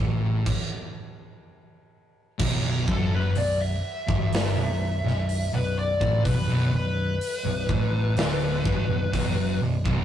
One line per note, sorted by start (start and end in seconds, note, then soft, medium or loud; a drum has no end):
0.00 0.43 A1 medium
0.00 0.45 A2 medium
0.46 kick loud
0.46 crash loud
2.39 2.84 B0 loud
2.39 2.86 B1 loud
2.39 kick loud
2.39 crash loud
2.88 3.33 F#1 loud
2.88 3.34 F#2 loud
2.88 3.13 A4 medium
2.88 kick loud
3.15 3.37 B4 medium
3.35 3.81 B0 medium
3.35 3.74 B1 medium
3.35 3.60 D5 medium
3.35 open hi-hat medium
3.61 5.49 E5 medium
4.07 4.53 G1 loud
4.07 4.54 G2 loud
4.07 kick loud
4.33 snare loud
4.33 open hi-hat medium
4.56 5.01 B0 medium
4.56 4.95 B1 medium
5.04 5.49 B0 medium
5.04 5.43 B1 medium
5.04 snare soft
5.29 open hi-hat medium
5.53 5.97 B0 medium
5.53 5.91 B1 medium
5.53 5.77 B4 medium
5.79 6.24 D5 medium
6.01 6.23 A1 medium
6.01 6.23 A2 loud
6.01 kick loud
6.24 6.47 B0 medium
6.24 6.48 B1 medium
6.24 6.71 B4 loud
6.24 kick medium
6.24 open hi-hat medium
6.49 6.72 B0 medium
6.49 6.72 B1 loud
6.73 7.18 B0 medium
6.73 7.12 B1 medium
6.73 9.59 B4 loud
7.21 open hi-hat medium
7.45 7.68 B0 medium
7.45 7.68 B1 medium
7.69 8.14 A1 loud
7.69 8.15 A2 loud
7.69 kick loud
8.17 8.62 D1 loud
8.17 8.64 D2 loud
8.17 snare loud
8.17 open hi-hat medium
8.65 8.88 G1 loud
8.65 8.88 G2 loud
8.65 kick loud
8.89 9.11 B0 medium
8.89 9.13 B1 medium
9.13 9.36 B0 loud
9.13 9.36 B1 loud
9.13 kick loud
9.13 open hi-hat medium
9.37 9.60 F#1 loud
9.37 9.60 F#2 loud
9.61 9.83 B0 medium
9.61 9.83 B1 medium
9.85 10.05 B0 medium
9.85 10.05 B1 loud
9.85 kick loud